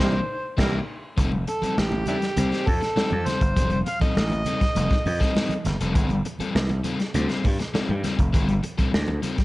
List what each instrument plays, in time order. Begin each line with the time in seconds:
Already playing: harmonica C5
0.00 slap bass C2, overdriven electric guitar E3 A#3 D4, horn section G3 E4 A#4, snare
0.57 slap bass C2, overdriven electric guitar E3 A#3 D4 G4, horn section G3 E4 A#4, kick, snare, crash
1.17 slap bass F1, overdriven electric guitar G3 C4 D#4 A4, kick, closed hi-hat, muted conga
1.32 muted overdriven electric guitar stroke, muted conga, high conga
1.47 harmonica A4, muted overdriven electric guitar stroke, closed hi-hat
1.62 overdriven electric guitar G3 C4 D#4 A4, muted slap bass stroke, closed hi-hat, high conga
1.78 slap bass A1, harmonica G4, muted overdriven electric guitar stroke, snare
1.92 muted overdriven electric guitar stroke, muted conga, high conga
2.06 overdriven electric guitar G3 C4 D#4 A4, harmonica D4 E4 G4, closed hi-hat, low conga
2.22 muted overdriven electric guitar stroke, snare, closed hi-hat
2.36 slap bass C2, overdriven electric guitar G3 C4 D#4 C5, closed hi-hat, low conga
2.51 snare, closed hi-hat, muted conga
2.66 slap bass F2, harmonica A4, muted overdriven electric guitar stroke, kick, open hi-hat, high conga
2.81 muted overdriven electric guitar stroke, snare, closed hi-hat
2.96 overdriven electric guitar G3 C4 D#4 A4, snare, high conga
3.11 slap bass F2, muted overdriven electric guitar stroke, high conga
3.26 overdriven electric guitar G3 C4 D#4 A4, harmonica C5, snare, closed hi-hat, low conga
3.41 slap bass G1, muted overdriven electric guitar stroke, kick, closed hi-hat
3.56 slap bass F1, overdriven electric guitar G3 C4 D#4 A4, kick, closed hi-hat, muted conga
3.70 harmonica C5, muted overdriven electric guitar stroke, closed hi-hat, muted conga, high conga
3.86 harmonica F5, muted overdriven electric guitar stroke, closed hi-hat
4.00 overdriven electric guitar G3 C4 D#4 A4, harmonica D#5, muted slap bass stroke, kick, closed hi-hat, high conga
4.15 slap bass A1, snare, muted conga
4.30 muted overdriven electric guitar stroke, closed hi-hat, muted conga, high conga
4.45 overdriven electric guitar G3 C4 D#4 A4, closed hi-hat, low conga
4.61 muted overdriven electric guitar stroke, kick, snare, closed hi-hat
4.75 slap bass F1, overdriven electric guitar G3 C4 D#4 A4, closed hi-hat, muted conga, low conga
4.90 kick, snare, closed hi-hat, muted conga
5.05 slap bass F2, muted overdriven electric guitar stroke, open hi-hat, high conga
5.20 overdriven electric guitar G3 C4 D#4 A4, kick, snare, closed hi-hat
5.35 overdriven electric guitar G3 C4 D#4 A4, snare, muted conga, high conga
5.49 closed hi-hat, muted conga, high conga
5.65 slap bass G1, muted overdriven electric guitar stroke, snare, closed hi-hat, low conga
5.80 slap bass F1, overdriven electric guitar G3 C4 D#4 A4, closed hi-hat
5.95 slap bass G1, overdriven electric guitar G3 C4 F4 A4, kick, closed hi-hat
6.09 muted overdriven electric guitar stroke, closed hi-hat, muted conga, high conga
6.25 muted overdriven electric guitar stroke, closed hi-hat
6.39 overdriven electric guitar G3 C4 F4 A4, muted slap bass stroke, closed hi-hat, high conga
6.55 slap bass C2, muted overdriven electric guitar stroke, snare
6.69 muted overdriven electric guitar stroke, closed hi-hat, muted conga, high conga
6.84 overdriven electric guitar G3 C4 F4 A4, closed hi-hat, low conga
6.99 muted overdriven electric guitar stroke, snare, closed hi-hat
7.14 slap bass D2, overdriven electric guitar G3 C4 F4 C5, closed hi-hat, low conga
7.29 snare, closed hi-hat
7.44 slap bass G2, muted overdriven electric guitar stroke, kick, open hi-hat, high conga
7.60 muted overdriven electric guitar stroke, snare, closed hi-hat
7.74 overdriven electric guitar G3 C4 F4 A4, snare, high conga
7.89 slap bass G2, muted overdriven electric guitar stroke, high conga
8.04 overdriven electric guitar G3 C4 F4 A4, snare, closed hi-hat, low conga
8.19 slap bass F1, muted overdriven electric guitar stroke, kick, closed hi-hat
8.33 slap bass G1, overdriven electric guitar G3 C4 F4 A4, kick, closed hi-hat, muted conga
8.48 muted overdriven electric guitar stroke, closed hi-hat, high conga
8.63 muted overdriven electric guitar stroke, closed hi-hat
8.78 overdriven electric guitar G3 C4 F4 A4, muted slap bass stroke, kick, closed hi-hat, high conga
8.94 slap bass D2, snare
9.08 muted overdriven electric guitar stroke, muted conga, high conga
9.23 overdriven electric guitar G3 C4 F4 A4, closed hi-hat, low conga
9.38 muted overdriven electric guitar stroke, kick, snare, closed hi-hat